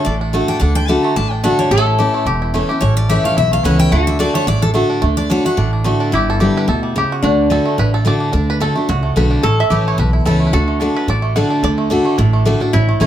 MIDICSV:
0, 0, Header, 1, 6, 480
1, 0, Start_track
1, 0, Key_signature, 2, "major"
1, 0, Tempo, 275609
1, 1062, Time_signature, 4, 2, 24, 8
1, 22757, End_track
2, 0, Start_track
2, 0, Title_t, "Steel-string acoustic guitar"
2, 0, Program_c, 0, 25
2, 81, Note_on_c, 0, 74, 96
2, 246, Note_off_c, 0, 74, 0
2, 840, Note_on_c, 0, 79, 90
2, 1031, Note_off_c, 0, 79, 0
2, 1038, Note_on_c, 0, 78, 85
2, 1304, Note_off_c, 0, 78, 0
2, 1311, Note_on_c, 0, 79, 105
2, 1526, Note_off_c, 0, 79, 0
2, 1526, Note_on_c, 0, 81, 96
2, 1797, Note_off_c, 0, 81, 0
2, 1797, Note_on_c, 0, 82, 126
2, 2012, Note_off_c, 0, 82, 0
2, 2025, Note_on_c, 0, 81, 94
2, 2274, Note_off_c, 0, 81, 0
2, 2274, Note_on_c, 0, 79, 94
2, 2490, Note_off_c, 0, 79, 0
2, 2506, Note_on_c, 0, 78, 91
2, 2760, Note_off_c, 0, 78, 0
2, 2765, Note_on_c, 0, 73, 91
2, 3873, Note_off_c, 0, 73, 0
2, 4886, Note_on_c, 0, 73, 84
2, 5150, Note_off_c, 0, 73, 0
2, 5167, Note_on_c, 0, 74, 93
2, 5377, Note_off_c, 0, 74, 0
2, 5391, Note_on_c, 0, 76, 91
2, 5643, Note_off_c, 0, 76, 0
2, 5664, Note_on_c, 0, 77, 111
2, 5866, Note_off_c, 0, 77, 0
2, 5882, Note_on_c, 0, 76, 89
2, 6129, Note_off_c, 0, 76, 0
2, 6148, Note_on_c, 0, 77, 98
2, 6348, Note_off_c, 0, 77, 0
2, 6360, Note_on_c, 0, 78, 97
2, 6603, Note_off_c, 0, 78, 0
2, 6610, Note_on_c, 0, 79, 112
2, 6838, Note_off_c, 0, 79, 0
2, 6838, Note_on_c, 0, 78, 90
2, 7083, Note_off_c, 0, 78, 0
2, 7090, Note_on_c, 0, 76, 94
2, 7299, Note_off_c, 0, 76, 0
2, 7312, Note_on_c, 0, 74, 92
2, 7563, Note_off_c, 0, 74, 0
2, 7577, Note_on_c, 0, 73, 110
2, 7782, Note_off_c, 0, 73, 0
2, 7804, Note_on_c, 0, 74, 105
2, 8050, Note_off_c, 0, 74, 0
2, 8053, Note_on_c, 0, 69, 105
2, 8181, Note_off_c, 0, 69, 0
2, 9004, Note_on_c, 0, 74, 92
2, 9215, Note_off_c, 0, 74, 0
2, 9254, Note_on_c, 0, 73, 87
2, 9495, Note_off_c, 0, 73, 0
2, 9505, Note_on_c, 0, 78, 99
2, 9943, Note_off_c, 0, 78, 0
2, 22757, End_track
3, 0, Start_track
3, 0, Title_t, "Resonator guitar played with a steel bar"
3, 0, Program_c, 1, 25
3, 0, Note_on_c, 1, 69, 110
3, 2691, Note_off_c, 1, 69, 0
3, 2980, Note_on_c, 1, 69, 104
3, 6827, Note_on_c, 1, 66, 84
3, 6937, Note_off_c, 1, 69, 0
3, 10378, Note_off_c, 1, 66, 0
3, 10683, Note_on_c, 1, 64, 91
3, 12575, Note_off_c, 1, 64, 0
3, 12582, Note_on_c, 1, 62, 92
3, 16429, Note_on_c, 1, 69, 111
3, 16538, Note_off_c, 1, 62, 0
3, 18059, Note_off_c, 1, 69, 0
3, 18339, Note_on_c, 1, 66, 101
3, 22173, Note_on_c, 1, 64, 106
3, 22295, Note_off_c, 1, 66, 0
3, 22757, Note_off_c, 1, 64, 0
3, 22757, End_track
4, 0, Start_track
4, 0, Title_t, "Five-string banjo"
4, 0, Program_c, 2, 105
4, 0, Note_on_c, 2, 57, 68
4, 105, Note_on_c, 2, 62, 68
4, 347, Note_off_c, 2, 62, 0
4, 367, Note_on_c, 2, 62, 61
4, 581, Note_off_c, 2, 57, 0
4, 588, Note_on_c, 2, 57, 66
4, 828, Note_off_c, 2, 62, 0
4, 849, Note_on_c, 2, 62, 64
4, 1051, Note_off_c, 2, 62, 0
4, 1072, Note_on_c, 2, 62, 67
4, 1310, Note_off_c, 2, 62, 0
4, 1330, Note_on_c, 2, 62, 60
4, 1555, Note_on_c, 2, 50, 61
4, 1811, Note_off_c, 2, 57, 0
4, 1818, Note_on_c, 2, 57, 69
4, 1982, Note_off_c, 2, 62, 0
4, 2028, Note_on_c, 2, 62, 72
4, 2240, Note_off_c, 2, 50, 0
4, 2262, Note_off_c, 2, 62, 0
4, 2283, Note_on_c, 2, 62, 59
4, 2497, Note_off_c, 2, 57, 0
4, 2504, Note_on_c, 2, 57, 71
4, 2747, Note_off_c, 2, 62, 0
4, 2768, Note_on_c, 2, 62, 58
4, 2977, Note_off_c, 2, 57, 0
4, 2984, Note_off_c, 2, 62, 0
4, 2984, Note_on_c, 2, 55, 71
4, 3091, Note_off_c, 2, 55, 0
4, 3091, Note_on_c, 2, 57, 76
4, 3247, Note_on_c, 2, 64, 58
4, 3463, Note_on_c, 2, 67, 58
4, 3464, Note_off_c, 2, 57, 0
4, 3729, Note_on_c, 2, 57, 65
4, 3900, Note_off_c, 2, 64, 0
4, 3923, Note_off_c, 2, 67, 0
4, 3944, Note_on_c, 2, 67, 67
4, 4213, Note_on_c, 2, 64, 61
4, 4420, Note_off_c, 2, 57, 0
4, 4427, Note_on_c, 2, 57, 72
4, 4635, Note_off_c, 2, 67, 0
4, 4682, Note_on_c, 2, 67, 64
4, 4863, Note_off_c, 2, 64, 0
4, 4902, Note_on_c, 2, 61, 64
4, 5338, Note_off_c, 2, 67, 0
4, 5386, Note_on_c, 2, 67, 60
4, 5438, Note_off_c, 2, 57, 0
4, 5593, Note_off_c, 2, 61, 0
4, 5645, Note_on_c, 2, 57, 70
4, 5864, Note_on_c, 2, 64, 68
4, 6076, Note_off_c, 2, 67, 0
4, 6117, Note_off_c, 2, 57, 0
4, 6124, Note_on_c, 2, 57, 61
4, 6330, Note_on_c, 2, 61, 59
4, 6555, Note_off_c, 2, 64, 0
4, 6599, Note_on_c, 2, 64, 62
4, 6809, Note_off_c, 2, 57, 0
4, 6816, Note_on_c, 2, 57, 72
4, 6817, Note_off_c, 2, 61, 0
4, 6820, Note_off_c, 2, 64, 0
4, 7089, Note_on_c, 2, 62, 62
4, 7297, Note_off_c, 2, 62, 0
4, 7304, Note_on_c, 2, 62, 62
4, 7511, Note_off_c, 2, 57, 0
4, 7561, Note_on_c, 2, 57, 76
4, 7777, Note_off_c, 2, 62, 0
4, 7784, Note_on_c, 2, 62, 66
4, 8039, Note_off_c, 2, 62, 0
4, 8046, Note_on_c, 2, 62, 60
4, 8217, Note_off_c, 2, 57, 0
4, 8267, Note_on_c, 2, 57, 75
4, 8521, Note_off_c, 2, 62, 0
4, 8528, Note_on_c, 2, 62, 68
4, 8718, Note_off_c, 2, 57, 0
4, 8739, Note_on_c, 2, 57, 79
4, 8988, Note_off_c, 2, 62, 0
4, 9009, Note_on_c, 2, 62, 60
4, 9206, Note_off_c, 2, 62, 0
4, 9227, Note_on_c, 2, 62, 59
4, 9432, Note_off_c, 2, 57, 0
4, 9498, Note_on_c, 2, 57, 73
4, 9694, Note_off_c, 2, 62, 0
4, 9715, Note_on_c, 2, 62, 65
4, 9956, Note_off_c, 2, 62, 0
4, 9977, Note_on_c, 2, 62, 64
4, 10146, Note_off_c, 2, 57, 0
4, 10190, Note_on_c, 2, 57, 71
4, 10434, Note_off_c, 2, 62, 0
4, 10454, Note_on_c, 2, 62, 69
4, 10667, Note_off_c, 2, 57, 0
4, 10667, Note_off_c, 2, 62, 0
4, 10712, Note_on_c, 2, 67, 84
4, 10958, Note_off_c, 2, 67, 0
4, 10968, Note_on_c, 2, 69, 94
4, 11149, Note_on_c, 2, 67, 55
4, 11441, Note_off_c, 2, 69, 0
4, 11449, Note_on_c, 2, 71, 93
4, 11631, Note_off_c, 2, 71, 0
4, 11644, Note_on_c, 2, 69, 90
4, 11837, Note_off_c, 2, 67, 0
4, 11895, Note_on_c, 2, 55, 62
4, 12128, Note_off_c, 2, 69, 0
4, 12153, Note_on_c, 2, 67, 88
4, 12399, Note_off_c, 2, 67, 0
4, 12405, Note_on_c, 2, 66, 81
4, 12544, Note_off_c, 2, 55, 0
4, 12593, Note_off_c, 2, 66, 0
4, 12614, Note_on_c, 2, 66, 94
4, 13086, Note_off_c, 2, 66, 0
4, 13093, Note_on_c, 2, 69, 91
4, 13332, Note_on_c, 2, 57, 71
4, 13566, Note_off_c, 2, 69, 0
4, 13573, Note_on_c, 2, 71, 107
4, 13804, Note_off_c, 2, 71, 0
4, 13829, Note_on_c, 2, 69, 93
4, 14041, Note_off_c, 2, 69, 0
4, 14060, Note_on_c, 2, 74, 111
4, 14280, Note_off_c, 2, 74, 0
4, 14287, Note_on_c, 2, 62, 63
4, 14479, Note_off_c, 2, 62, 0
4, 14500, Note_on_c, 2, 62, 62
4, 14800, Note_on_c, 2, 71, 96
4, 14853, Note_off_c, 2, 57, 0
4, 14998, Note_off_c, 2, 71, 0
4, 15005, Note_on_c, 2, 69, 96
4, 15192, Note_off_c, 2, 62, 0
4, 15248, Note_on_c, 2, 57, 66
4, 15488, Note_off_c, 2, 69, 0
4, 15492, Note_on_c, 2, 66, 95
4, 15717, Note_off_c, 2, 57, 0
4, 15724, Note_on_c, 2, 57, 58
4, 15966, Note_off_c, 2, 66, 0
4, 15973, Note_on_c, 2, 71, 88
4, 16201, Note_off_c, 2, 71, 0
4, 16208, Note_on_c, 2, 62, 64
4, 16417, Note_on_c, 2, 61, 62
4, 16424, Note_off_c, 2, 62, 0
4, 16722, Note_on_c, 2, 76, 98
4, 16896, Note_on_c, 2, 67, 60
4, 16948, Note_off_c, 2, 57, 0
4, 17110, Note_off_c, 2, 61, 0
4, 17197, Note_off_c, 2, 76, 0
4, 17204, Note_on_c, 2, 73, 90
4, 17400, Note_off_c, 2, 73, 0
4, 17407, Note_on_c, 2, 71, 91
4, 17590, Note_off_c, 2, 67, 0
4, 17639, Note_off_c, 2, 71, 0
4, 17646, Note_on_c, 2, 64, 61
4, 17863, Note_off_c, 2, 64, 0
4, 17870, Note_on_c, 2, 69, 86
4, 18112, Note_on_c, 2, 57, 58
4, 18210, Note_off_c, 2, 69, 0
4, 18231, Note_on_c, 2, 71, 68
4, 18342, Note_off_c, 2, 71, 0
4, 18349, Note_on_c, 2, 69, 89
4, 18589, Note_off_c, 2, 57, 0
4, 18596, Note_on_c, 2, 57, 59
4, 18808, Note_on_c, 2, 62, 58
4, 19037, Note_off_c, 2, 69, 0
4, 19090, Note_off_c, 2, 62, 0
4, 19097, Note_on_c, 2, 71, 99
4, 19314, Note_off_c, 2, 71, 0
4, 19325, Note_on_c, 2, 74, 105
4, 19539, Note_off_c, 2, 57, 0
4, 19546, Note_on_c, 2, 57, 63
4, 19774, Note_off_c, 2, 74, 0
4, 19781, Note_on_c, 2, 78, 107
4, 20027, Note_off_c, 2, 78, 0
4, 20034, Note_on_c, 2, 62, 64
4, 20278, Note_on_c, 2, 74, 96
4, 20509, Note_off_c, 2, 57, 0
4, 20516, Note_on_c, 2, 57, 61
4, 20693, Note_off_c, 2, 62, 0
4, 20732, Note_on_c, 2, 62, 58
4, 20985, Note_off_c, 2, 57, 0
4, 20992, Note_on_c, 2, 57, 73
4, 21191, Note_off_c, 2, 62, 0
4, 21212, Note_on_c, 2, 62, 72
4, 21423, Note_off_c, 2, 74, 0
4, 21472, Note_off_c, 2, 57, 0
4, 21479, Note_on_c, 2, 57, 63
4, 21681, Note_off_c, 2, 62, 0
4, 21702, Note_on_c, 2, 62, 60
4, 21945, Note_off_c, 2, 62, 0
4, 21966, Note_on_c, 2, 62, 63
4, 22182, Note_off_c, 2, 62, 0
4, 22189, Note_on_c, 2, 64, 62
4, 22437, Note_off_c, 2, 57, 0
4, 22444, Note_on_c, 2, 57, 63
4, 22654, Note_off_c, 2, 64, 0
4, 22661, Note_on_c, 2, 73, 84
4, 22757, Note_off_c, 2, 57, 0
4, 22757, Note_off_c, 2, 73, 0
4, 22757, End_track
5, 0, Start_track
5, 0, Title_t, "Steel-string acoustic guitar"
5, 0, Program_c, 3, 25
5, 107, Note_on_c, 3, 45, 94
5, 576, Note_on_c, 3, 50, 86
5, 586, Note_on_c, 3, 57, 94
5, 599, Note_on_c, 3, 62, 104
5, 602, Note_on_c, 3, 66, 102
5, 1022, Note_off_c, 3, 45, 0
5, 1038, Note_off_c, 3, 50, 0
5, 1043, Note_off_c, 3, 57, 0
5, 1049, Note_off_c, 3, 62, 0
5, 1051, Note_off_c, 3, 66, 0
5, 1062, Note_on_c, 3, 50, 98
5, 1519, Note_off_c, 3, 50, 0
5, 1540, Note_on_c, 3, 50, 87
5, 1552, Note_on_c, 3, 57, 93
5, 1559, Note_on_c, 3, 62, 99
5, 1562, Note_on_c, 3, 66, 104
5, 2000, Note_off_c, 3, 50, 0
5, 2006, Note_off_c, 3, 57, 0
5, 2009, Note_off_c, 3, 62, 0
5, 2011, Note_off_c, 3, 66, 0
5, 2030, Note_on_c, 3, 45, 101
5, 2499, Note_on_c, 3, 50, 94
5, 2505, Note_on_c, 3, 57, 99
5, 2514, Note_on_c, 3, 62, 103
5, 2521, Note_on_c, 3, 66, 98
5, 2943, Note_off_c, 3, 45, 0
5, 2960, Note_off_c, 3, 50, 0
5, 2962, Note_off_c, 3, 57, 0
5, 2967, Note_off_c, 3, 62, 0
5, 2971, Note_off_c, 3, 66, 0
5, 2984, Note_on_c, 3, 45, 96
5, 3456, Note_on_c, 3, 52, 93
5, 3473, Note_on_c, 3, 57, 88
5, 3478, Note_on_c, 3, 61, 85
5, 3485, Note_on_c, 3, 64, 98
5, 3900, Note_off_c, 3, 45, 0
5, 3918, Note_off_c, 3, 52, 0
5, 3927, Note_off_c, 3, 57, 0
5, 3929, Note_off_c, 3, 61, 0
5, 3933, Note_off_c, 3, 64, 0
5, 3944, Note_on_c, 3, 40, 93
5, 4419, Note_on_c, 3, 52, 85
5, 4436, Note_on_c, 3, 57, 87
5, 4442, Note_on_c, 3, 61, 95
5, 4449, Note_on_c, 3, 64, 95
5, 4672, Note_off_c, 3, 64, 0
5, 4674, Note_off_c, 3, 52, 0
5, 4683, Note_off_c, 3, 57, 0
5, 4686, Note_off_c, 3, 61, 0
5, 4693, Note_on_c, 3, 64, 64
5, 4722, Note_on_c, 3, 61, 55
5, 4861, Note_off_c, 3, 40, 0
5, 4898, Note_off_c, 3, 64, 0
5, 4909, Note_on_c, 3, 45, 100
5, 4912, Note_off_c, 3, 61, 0
5, 5390, Note_on_c, 3, 52, 86
5, 5402, Note_on_c, 3, 57, 96
5, 5410, Note_on_c, 3, 61, 107
5, 5418, Note_on_c, 3, 64, 97
5, 5823, Note_off_c, 3, 45, 0
5, 5845, Note_off_c, 3, 52, 0
5, 5851, Note_off_c, 3, 57, 0
5, 5855, Note_off_c, 3, 61, 0
5, 5859, Note_off_c, 3, 64, 0
5, 5882, Note_on_c, 3, 40, 97
5, 6343, Note_on_c, 3, 52, 89
5, 6352, Note_on_c, 3, 57, 96
5, 6362, Note_on_c, 3, 61, 112
5, 6375, Note_on_c, 3, 64, 104
5, 6790, Note_off_c, 3, 40, 0
5, 6801, Note_off_c, 3, 52, 0
5, 6806, Note_off_c, 3, 57, 0
5, 6811, Note_off_c, 3, 61, 0
5, 6818, Note_off_c, 3, 64, 0
5, 6832, Note_on_c, 3, 50, 100
5, 7276, Note_off_c, 3, 50, 0
5, 7297, Note_on_c, 3, 50, 89
5, 7309, Note_on_c, 3, 57, 89
5, 7318, Note_on_c, 3, 62, 90
5, 7323, Note_on_c, 3, 66, 101
5, 7759, Note_off_c, 3, 50, 0
5, 7765, Note_off_c, 3, 57, 0
5, 7769, Note_off_c, 3, 62, 0
5, 7772, Note_off_c, 3, 66, 0
5, 7788, Note_on_c, 3, 45, 104
5, 8249, Note_on_c, 3, 50, 92
5, 8261, Note_on_c, 3, 57, 89
5, 8272, Note_on_c, 3, 62, 100
5, 8276, Note_on_c, 3, 66, 100
5, 8702, Note_off_c, 3, 45, 0
5, 8715, Note_off_c, 3, 50, 0
5, 8720, Note_off_c, 3, 57, 0
5, 8726, Note_off_c, 3, 62, 0
5, 8728, Note_off_c, 3, 66, 0
5, 8740, Note_on_c, 3, 50, 97
5, 9204, Note_off_c, 3, 50, 0
5, 9225, Note_on_c, 3, 50, 92
5, 9235, Note_on_c, 3, 57, 101
5, 9243, Note_on_c, 3, 62, 86
5, 9253, Note_on_c, 3, 66, 101
5, 9461, Note_off_c, 3, 66, 0
5, 9477, Note_off_c, 3, 50, 0
5, 9482, Note_off_c, 3, 57, 0
5, 9482, Note_on_c, 3, 66, 57
5, 9486, Note_off_c, 3, 62, 0
5, 9508, Note_on_c, 3, 62, 52
5, 9692, Note_off_c, 3, 66, 0
5, 9704, Note_on_c, 3, 45, 98
5, 9705, Note_off_c, 3, 62, 0
5, 10177, Note_on_c, 3, 50, 95
5, 10191, Note_on_c, 3, 57, 99
5, 10197, Note_on_c, 3, 62, 97
5, 10205, Note_on_c, 3, 66, 98
5, 10620, Note_off_c, 3, 45, 0
5, 10638, Note_off_c, 3, 50, 0
5, 10645, Note_off_c, 3, 57, 0
5, 10648, Note_off_c, 3, 62, 0
5, 10652, Note_off_c, 3, 66, 0
5, 10661, Note_on_c, 3, 43, 92
5, 11149, Note_on_c, 3, 50, 85
5, 11157, Note_on_c, 3, 55, 92
5, 11165, Note_on_c, 3, 59, 98
5, 11176, Note_on_c, 3, 67, 89
5, 11579, Note_off_c, 3, 43, 0
5, 11604, Note_off_c, 3, 50, 0
5, 11609, Note_off_c, 3, 55, 0
5, 11613, Note_off_c, 3, 59, 0
5, 11618, Note_off_c, 3, 67, 0
5, 11627, Note_on_c, 3, 47, 92
5, 12084, Note_off_c, 3, 47, 0
5, 12115, Note_on_c, 3, 49, 96
5, 12568, Note_off_c, 3, 49, 0
5, 12600, Note_on_c, 3, 50, 90
5, 13041, Note_off_c, 3, 50, 0
5, 13062, Note_on_c, 3, 50, 90
5, 13068, Note_on_c, 3, 57, 87
5, 13079, Note_on_c, 3, 62, 87
5, 13087, Note_on_c, 3, 66, 91
5, 13521, Note_off_c, 3, 50, 0
5, 13524, Note_off_c, 3, 57, 0
5, 13530, Note_off_c, 3, 62, 0
5, 13534, Note_off_c, 3, 66, 0
5, 13548, Note_on_c, 3, 45, 89
5, 14015, Note_on_c, 3, 50, 89
5, 14030, Note_on_c, 3, 57, 95
5, 14033, Note_on_c, 3, 62, 100
5, 14048, Note_on_c, 3, 66, 93
5, 14463, Note_off_c, 3, 45, 0
5, 14477, Note_off_c, 3, 50, 0
5, 14485, Note_off_c, 3, 57, 0
5, 14486, Note_off_c, 3, 62, 0
5, 14494, Note_off_c, 3, 66, 0
5, 14508, Note_on_c, 3, 50, 92
5, 14963, Note_off_c, 3, 50, 0
5, 14984, Note_on_c, 3, 50, 90
5, 14996, Note_on_c, 3, 57, 83
5, 15000, Note_on_c, 3, 62, 94
5, 15006, Note_on_c, 3, 66, 99
5, 15229, Note_off_c, 3, 66, 0
5, 15237, Note_off_c, 3, 50, 0
5, 15242, Note_off_c, 3, 57, 0
5, 15244, Note_off_c, 3, 62, 0
5, 15250, Note_on_c, 3, 66, 64
5, 15279, Note_on_c, 3, 62, 55
5, 15456, Note_off_c, 3, 66, 0
5, 15471, Note_off_c, 3, 62, 0
5, 15477, Note_on_c, 3, 45, 103
5, 15952, Note_on_c, 3, 50, 91
5, 15959, Note_on_c, 3, 57, 103
5, 15972, Note_on_c, 3, 62, 101
5, 15979, Note_on_c, 3, 66, 107
5, 16387, Note_off_c, 3, 45, 0
5, 16406, Note_off_c, 3, 50, 0
5, 16410, Note_off_c, 3, 57, 0
5, 16416, Note_off_c, 3, 62, 0
5, 16419, Note_off_c, 3, 66, 0
5, 16433, Note_on_c, 3, 45, 94
5, 16899, Note_on_c, 3, 52, 83
5, 16914, Note_on_c, 3, 57, 91
5, 16923, Note_on_c, 3, 61, 93
5, 16924, Note_on_c, 3, 64, 90
5, 17344, Note_off_c, 3, 45, 0
5, 17359, Note_off_c, 3, 52, 0
5, 17366, Note_off_c, 3, 57, 0
5, 17371, Note_off_c, 3, 61, 0
5, 17372, Note_off_c, 3, 64, 0
5, 17379, Note_on_c, 3, 40, 93
5, 17859, Note_on_c, 3, 52, 96
5, 17871, Note_on_c, 3, 57, 100
5, 17885, Note_on_c, 3, 61, 110
5, 17888, Note_on_c, 3, 64, 106
5, 18297, Note_off_c, 3, 40, 0
5, 18319, Note_off_c, 3, 52, 0
5, 18325, Note_off_c, 3, 57, 0
5, 18332, Note_off_c, 3, 61, 0
5, 18333, Note_off_c, 3, 64, 0
5, 18348, Note_on_c, 3, 50, 100
5, 18799, Note_off_c, 3, 50, 0
5, 18820, Note_on_c, 3, 50, 83
5, 18832, Note_on_c, 3, 57, 89
5, 18837, Note_on_c, 3, 62, 93
5, 18846, Note_on_c, 3, 66, 94
5, 19279, Note_off_c, 3, 50, 0
5, 19285, Note_off_c, 3, 57, 0
5, 19288, Note_off_c, 3, 62, 0
5, 19292, Note_off_c, 3, 66, 0
5, 19300, Note_on_c, 3, 45, 96
5, 19779, Note_on_c, 3, 50, 92
5, 19792, Note_on_c, 3, 57, 97
5, 19798, Note_on_c, 3, 62, 100
5, 19813, Note_on_c, 3, 66, 97
5, 20217, Note_off_c, 3, 45, 0
5, 20239, Note_off_c, 3, 50, 0
5, 20245, Note_off_c, 3, 57, 0
5, 20248, Note_off_c, 3, 62, 0
5, 20255, Note_off_c, 3, 66, 0
5, 20265, Note_on_c, 3, 50, 98
5, 20704, Note_off_c, 3, 50, 0
5, 20725, Note_on_c, 3, 50, 96
5, 20737, Note_on_c, 3, 57, 87
5, 20744, Note_on_c, 3, 62, 100
5, 20759, Note_on_c, 3, 66, 109
5, 21191, Note_off_c, 3, 50, 0
5, 21197, Note_off_c, 3, 57, 0
5, 21201, Note_off_c, 3, 62, 0
5, 21208, Note_off_c, 3, 66, 0
5, 21220, Note_on_c, 3, 45, 101
5, 21691, Note_on_c, 3, 50, 92
5, 21695, Note_on_c, 3, 57, 94
5, 21707, Note_on_c, 3, 62, 105
5, 21717, Note_on_c, 3, 66, 115
5, 21934, Note_off_c, 3, 66, 0
5, 21949, Note_off_c, 3, 50, 0
5, 21951, Note_off_c, 3, 57, 0
5, 21954, Note_on_c, 3, 66, 62
5, 21957, Note_off_c, 3, 62, 0
5, 21979, Note_on_c, 3, 62, 55
5, 22137, Note_off_c, 3, 45, 0
5, 22167, Note_off_c, 3, 66, 0
5, 22180, Note_off_c, 3, 62, 0
5, 22184, Note_on_c, 3, 45, 102
5, 22640, Note_on_c, 3, 52, 86
5, 22653, Note_on_c, 3, 57, 97
5, 22662, Note_on_c, 3, 61, 105
5, 22671, Note_on_c, 3, 64, 108
5, 22757, Note_off_c, 3, 45, 0
5, 22757, Note_off_c, 3, 52, 0
5, 22757, Note_off_c, 3, 57, 0
5, 22757, Note_off_c, 3, 61, 0
5, 22757, Note_off_c, 3, 64, 0
5, 22757, End_track
6, 0, Start_track
6, 0, Title_t, "Upright bass"
6, 0, Program_c, 4, 32
6, 109, Note_on_c, 4, 33, 88
6, 713, Note_off_c, 4, 33, 0
6, 1068, Note_on_c, 4, 38, 93
6, 1672, Note_off_c, 4, 38, 0
6, 2024, Note_on_c, 4, 33, 83
6, 2629, Note_off_c, 4, 33, 0
6, 2977, Note_on_c, 4, 33, 92
6, 3584, Note_off_c, 4, 33, 0
6, 3928, Note_on_c, 4, 28, 89
6, 4538, Note_off_c, 4, 28, 0
6, 4906, Note_on_c, 4, 33, 96
6, 5510, Note_off_c, 4, 33, 0
6, 5870, Note_on_c, 4, 35, 87
6, 6275, Note_off_c, 4, 35, 0
6, 6345, Note_on_c, 4, 37, 84
6, 6753, Note_off_c, 4, 37, 0
6, 6823, Note_on_c, 4, 38, 101
6, 7429, Note_off_c, 4, 38, 0
6, 7782, Note_on_c, 4, 33, 88
6, 8388, Note_off_c, 4, 33, 0
6, 8749, Note_on_c, 4, 38, 99
6, 9353, Note_off_c, 4, 38, 0
6, 9710, Note_on_c, 4, 33, 88
6, 10313, Note_off_c, 4, 33, 0
6, 10674, Note_on_c, 4, 31, 92
6, 11276, Note_off_c, 4, 31, 0
6, 11635, Note_on_c, 4, 38, 86
6, 12236, Note_off_c, 4, 38, 0
6, 12588, Note_on_c, 4, 38, 92
6, 13192, Note_off_c, 4, 38, 0
6, 13557, Note_on_c, 4, 33, 93
6, 14158, Note_off_c, 4, 33, 0
6, 14515, Note_on_c, 4, 38, 97
6, 15117, Note_off_c, 4, 38, 0
6, 15478, Note_on_c, 4, 37, 86
6, 15880, Note_off_c, 4, 37, 0
6, 15956, Note_on_c, 4, 35, 80
6, 16358, Note_off_c, 4, 35, 0
6, 16430, Note_on_c, 4, 33, 96
6, 16730, Note_off_c, 4, 33, 0
6, 16899, Note_on_c, 4, 33, 92
6, 17308, Note_off_c, 4, 33, 0
6, 17388, Note_on_c, 4, 35, 88
6, 17794, Note_off_c, 4, 35, 0
6, 17866, Note_on_c, 4, 37, 89
6, 18272, Note_off_c, 4, 37, 0
6, 18344, Note_on_c, 4, 38, 94
6, 18949, Note_off_c, 4, 38, 0
6, 19292, Note_on_c, 4, 33, 92
6, 19900, Note_off_c, 4, 33, 0
6, 20250, Note_on_c, 4, 38, 92
6, 20859, Note_off_c, 4, 38, 0
6, 21216, Note_on_c, 4, 33, 91
6, 21823, Note_off_c, 4, 33, 0
6, 22176, Note_on_c, 4, 33, 102
6, 22480, Note_off_c, 4, 33, 0
6, 22646, Note_on_c, 4, 33, 85
6, 22757, Note_off_c, 4, 33, 0
6, 22757, End_track
0, 0, End_of_file